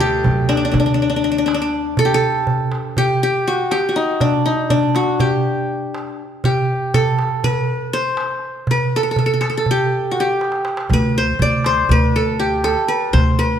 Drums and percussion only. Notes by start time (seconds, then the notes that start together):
0.24 darbuka dum
0.49 darbuka tek
0.74 darbuka dum
1.24 darbuka ka
1.48 darbuka tek
1.73 darbuka ka
1.97 darbuka dum
2.47 darbuka dum
2.72 darbuka tek
2.97 darbuka dum
3.22 darbuka ka
3.71 darbuka tek
4.21 darbuka dum
4.70 darbuka dum
4.95 darbuka tek
5.20 darbuka dum
5.45 darbuka ka
5.95 darbuka tek
6.44 darbuka dum
6.94 darbuka dum
7.19 darbuka tek
7.44 darbuka dum
7.68 darbuka ka
8.17 darbuka tek
8.67 darbuka dum
9.16 darbuka dum
9.42 darbuka tek
9.66 darbuka dum
9.91 darbuka ka
10.16 darbuka ka
10.41 darbuka tek
10.52 darbuka ka
10.65 darbuka tek
10.77 darbuka ka
10.90 darbuka dum
11.39 darbuka dum
11.64 darbuka tek
11.89 darbuka dum
12.15 darbuka ka
12.64 darbuka tek
13.14 darbuka dum